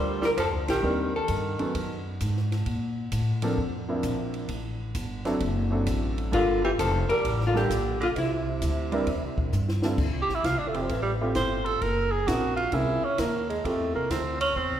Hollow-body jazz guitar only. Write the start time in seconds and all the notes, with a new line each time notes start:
Already playing: C5
0.25 A#4
0.40 A4
0.70 G4
1.16 A4
6.34 F4
6.65 G4
6.79 A4
7.09 A#4
7.47 F4
7.57 G4
8.03 F4
8.18 E4